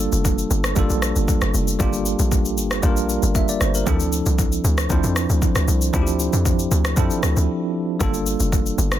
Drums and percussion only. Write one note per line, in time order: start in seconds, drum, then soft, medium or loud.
0.12 shaker medium
0.25 kick loud
0.25 shaker medium
0.38 shaker medium
0.51 shaker medium
0.64 cross-stick loud
0.64 shaker medium
0.76 kick loud
0.76 shaker medium
0.90 shaker medium
1.02 cross-stick loud
1.02 shaker medium
1.16 shaker medium
1.28 kick loud
1.28 shaker medium
1.42 cross-stick loud
1.42 shaker medium
1.54 shaker medium
1.68 shaker medium
1.80 kick loud
1.80 shaker medium
1.93 shaker medium
2.06 shaker loud
2.19 shaker medium
2.32 kick loud
2.32 shaker medium
2.45 shaker medium
2.58 shaker loud
2.71 cross-stick loud
2.71 shaker medium
2.83 kick loud
2.83 shaker medium
2.97 shaker medium
3.09 shaker medium
3.23 shaker medium
3.35 kick medium
3.35 shaker medium
3.48 shaker medium
3.61 cross-stick medium
3.61 shaker medium
3.74 shaker medium
3.87 kick loud
3.87 shaker medium
4.00 shaker medium
4.13 shaker loud
4.26 shaker medium
4.39 kick medium
4.39 shaker medium
4.52 shaker medium
4.65 shaker loud
4.78 cross-stick loud
4.78 shaker medium
4.90 kick loud
4.90 shaker medium
5.04 shaker medium
5.16 cross-stick loud
5.16 shaker medium
5.30 shaker medium
5.42 kick medium
5.42 shaker medium
5.55 cross-stick loud
5.55 shaker medium
5.68 shaker medium
5.82 shaker medium
5.94 kick loud
5.94 shaker medium
6.07 shaker medium
6.20 shaker loud
6.33 shaker medium
6.46 kick medium
6.46 shaker medium
6.59 shaker medium
6.72 shaker loud
6.85 cross-stick loud
6.85 shaker medium
6.97 kick loud
6.97 shaker medium
7.10 shaker medium
7.23 cross-stick loud
7.23 shaker medium
7.37 shaker medium
8.01 kick loud
8.01 shaker medium
8.14 shaker medium
8.27 shaker loud
8.40 shaker medium
8.52 kick loud
8.52 shaker medium
8.66 shaker medium
8.79 shaker loud
8.92 cross-stick loud
8.92 shaker soft